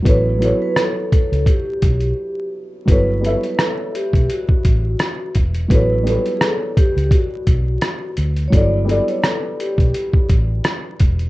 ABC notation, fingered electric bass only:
X:1
M:4/4
L:1/16
Q:"Swing 16ths" 1/4=85
K:Amix
V:1 name="Fingered electric bass" clef=bass
A,,,3 z4 C,, z2 B,,,2 z4 | G,,,3 z4 B,,, z2 A,,,2 z2 E,,,2 | A,,,3 z4 C,, z2 B,,,2 z2 D,,2 | G,,,3 z4 B,,, z2 A,,,2 z2 E,,,2 |]